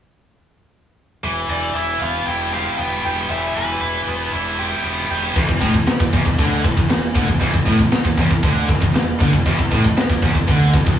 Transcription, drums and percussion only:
5.36 kick loud
5.36 crash loud
5.36 crash medium
5.49 kick medium
5.62 kick medium
5.62 crash medium
5.74 kick medium
5.87 snare loud
5.87 crash medium
6.00 kick medium
6.13 kick medium
6.13 crash medium
6.26 kick medium
6.39 kick loud
6.39 crash loud
6.64 kick loud
6.64 crash medium
6.77 kick medium
6.90 snare loud
6.90 crash medium
7.15 kick loud
7.15 crash medium
7.28 kick medium
7.41 kick medium
7.41 crash medium
7.54 kick medium
7.66 kick medium
7.66 crash medium
7.79 kick medium
7.92 snare loud
7.92 crash medium
8.05 kick medium
8.17 kick medium
8.17 crash medium
8.30 kick medium
8.43 kick loud
8.43 crash medium
8.69 kick loud
8.69 crash medium
8.82 kick medium
8.95 snare loud
8.95 crash medium
9.20 kick loud
9.20 crash medium
9.33 kick medium
9.46 kick medium
9.46 crash medium
9.59 kick medium
9.71 kick medium
9.71 crash medium
9.84 kick medium
9.97 snare loud
9.97 crash medium
10.10 kick medium
10.22 kick medium
10.22 crash medium
10.35 kick medium
10.47 kick loud
10.47 crash medium
10.73 kick loud
10.73 crash medium
10.86 kick medium

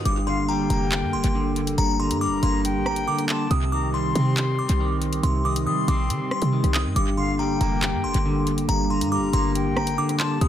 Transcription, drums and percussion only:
0.05 closed hi-hat medium
0.70 closed hi-hat medium
0.92 clap loud
0.92 closed hi-hat medium
1.24 closed hi-hat medium
1.56 closed hi-hat medium
1.67 closed hi-hat medium
1.78 closed hi-hat medium
2.11 closed hi-hat loud
2.43 closed hi-hat medium
2.65 closed hi-hat medium
2.86 cross-stick medium
2.96 closed hi-hat medium
3.19 closed hi-hat medium
3.29 clap loud
3.29 closed hi-hat medium
3.51 closed hi-hat medium
4.15 closed hi-hat medium
4.37 clap loud
4.37 closed hi-hat medium
4.69 closed hi-hat medium
5.02 closed hi-hat medium
5.13 closed hi-hat medium
5.23 closed hi-hat medium
5.56 closed hi-hat loud
5.88 closed hi-hat medium
6.10 closed hi-hat loud
6.31 cross-stick loud
6.42 closed hi-hat medium
6.64 closed hi-hat medium
6.74 clap loud
6.74 closed hi-hat medium
6.96 closed hi-hat medium
7.61 closed hi-hat medium
7.82 clap loud
7.82 closed hi-hat medium
8.14 closed hi-hat medium
8.47 closed hi-hat medium
8.58 closed hi-hat medium
8.69 closed hi-hat medium
9.01 closed hi-hat loud
9.33 closed hi-hat medium
9.55 closed hi-hat medium
9.77 cross-stick medium
9.87 closed hi-hat medium
10.09 closed hi-hat medium
10.19 clap loud
10.19 closed hi-hat medium
10.41 closed hi-hat medium

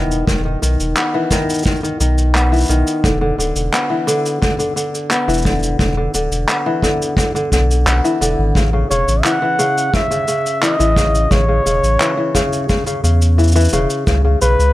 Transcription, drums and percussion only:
0.11 cabasa soft
0.27 kick loud
0.27 cabasa medium
0.63 cabasa medium
0.80 cabasa soft
0.96 clap loud
0.96 cabasa soft
1.31 kick medium
1.31 cabasa medium
1.50 cabasa soft
1.54 cabasa soft
1.58 cabasa soft
1.63 kick loud
1.63 cabasa soft
1.66 cabasa medium
1.66 cabasa soft
1.76 cabasa soft
1.80 cabasa soft
1.85 cabasa soft
2.01 cabasa medium
2.18 cabasa soft
2.35 clap medium
2.35 cabasa medium
2.53 cabasa soft
2.56 cabasa soft
2.58 cabasa soft
2.60 cabasa soft
2.63 cabasa soft
2.65 cabasa soft
2.68 cabasa soft
2.70 cabasa medium
2.87 cabasa soft
3.04 kick loud
3.04 cabasa medium
3.40 cabasa medium
3.56 cabasa medium
3.73 clap medium
3.73 cabasa medium
4.08 cabasa medium
4.26 cabasa medium
4.42 kick loud
4.42 cabasa medium
4.60 cabasa soft
4.77 cabasa medium
4.95 cabasa soft
5.11 clap medium
5.11 cabasa medium
5.29 cabasa soft
5.34 cabasa soft
5.38 cabasa soft
5.42 kick loud
5.42 cabasa soft
5.46 cabasa medium
5.55 cabasa soft
5.59 cabasa soft
5.63 cabasa medium
5.79 kick loud
5.79 cabasa medium
6.14 cabasa medium
6.32 cabasa medium
6.49 clap loud
6.49 cabasa medium
6.82 kick medium
6.82 cabasa medium
7.02 cabasa medium
7.17 kick loud
7.17 cabasa medium
7.36 cabasa soft
7.52 kick medium
7.52 cabasa medium
7.71 cabasa medium
7.87 clap loud
7.87 cabasa medium
8.05 cabasa soft
8.22 cabasa medium
8.55 kick loud
8.55 cabasa medium
8.91 cabasa medium
9.08 cabasa soft
9.24 clap medium
9.24 cabasa medium
9.60 cabasa medium
9.78 cabasa soft
9.94 kick loud
9.94 cabasa medium
10.12 cabasa soft
10.28 cabasa medium
10.46 cabasa soft
10.63 clap medium
10.63 cabasa medium
10.80 cabasa soft
10.96 kick loud
10.96 cabasa medium
11.15 cabasa medium
11.31 kick loud
11.31 cabasa soft
11.67 cabasa medium
11.84 cabasa soft
12.00 clap medium
12.00 cabasa medium
12.35 kick medium
12.35 cabasa medium
12.53 cabasa soft
12.69 kick loud
12.69 cabasa medium
12.87 cabasa soft
13.05 cabasa medium
13.22 cabasa soft
13.39 cabasa soft
13.43 cabasa soft
13.48 cabasa soft
13.52 cabasa soft
13.56 cabasa soft
13.60 cabasa soft
13.65 cabasa soft
13.69 cabasa medium
13.73 cabasa medium
13.90 cabasa soft
14.07 kick loud
14.07 cabasa medium
14.42 cabasa medium
14.60 cabasa soft

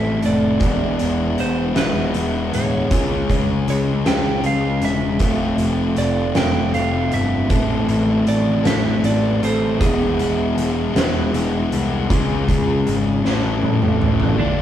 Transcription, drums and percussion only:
0.22 closed hi-hat medium
0.60 kick loud
0.60 closed hi-hat medium
0.99 closed hi-hat medium
1.38 closed hi-hat medium
1.76 snare loud
1.76 closed hi-hat medium
2.14 closed hi-hat medium
2.53 closed hi-hat medium
2.91 kick loud
2.91 closed hi-hat medium
3.30 kick medium
3.30 closed hi-hat medium
3.68 closed hi-hat medium
4.06 snare loud
4.06 closed hi-hat medium
4.44 closed hi-hat medium
4.82 closed hi-hat medium
5.19 kick loud
5.19 closed hi-hat medium
5.58 closed hi-hat medium
5.96 closed hi-hat medium
6.35 snare loud
6.35 closed hi-hat medium
6.74 closed hi-hat medium
7.12 closed hi-hat medium
7.50 kick loud
7.50 closed hi-hat medium
7.89 closed hi-hat medium
8.27 closed hi-hat medium
8.65 snare loud
8.65 closed hi-hat medium
9.04 closed hi-hat medium
9.43 closed hi-hat medium
9.81 kick loud
9.81 closed hi-hat medium
10.19 closed hi-hat medium
10.58 closed hi-hat medium
10.96 snare loud
10.96 closed hi-hat medium
11.34 closed hi-hat medium
11.72 closed hi-hat medium
12.10 kick loud
12.10 closed hi-hat medium
12.49 kick medium
12.49 closed hi-hat medium
12.87 closed hi-hat medium
13.25 snare medium
13.63 high tom medium
13.82 mid tom medium
14.02 mid tom medium
14.20 floor tom medium

